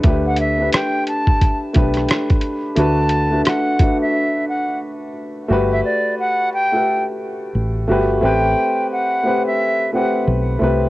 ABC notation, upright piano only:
X:1
M:4/4
L:1/16
Q:"Swing 16ths" 1/4=88
K:Glyd
V:1 name="Upright piano"
[A,DGB]3 [A,DGB]6- [A,DGB] [A,DGB]6 | [A,DFB]3 [A,DFB]3 [A,DFB]6- [A,DFB] z3 | [A,FGB]6- [A,FGB] [A,GAB]6- [A,GAB] [A,FGB]2 | [A,=CGB]6 [A,CGB]4 [A,CGB]4 [A,CGB]2 |]